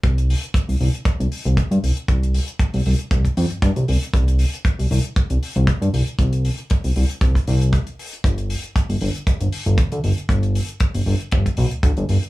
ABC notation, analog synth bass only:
X:1
M:4/4
L:1/16
Q:"Swing 16ths" 1/4=117
K:Gphr
V:1 name="Analog synth bass" clef=bass
C,,2 z3 C,, C,, z C,, C,, z C,, z G,, C,, z | C,,2 z3 C,, C,, z C,, z F,, G,, G,, C,, C,, z | C,,2 z3 C,, C,, z C,, C,, z C,, z G,, C,, z | C,,2 z3 C,, C,, z C,, z C,,2 z4 |
G,,,2 z3 G,,, G,,, z G,,, G,,, z G,,, z D,, G,,, z | G,,,2 z3 G,,, G,,, z G,,, z =B,,, D,, D,, G,,, G,,, z |]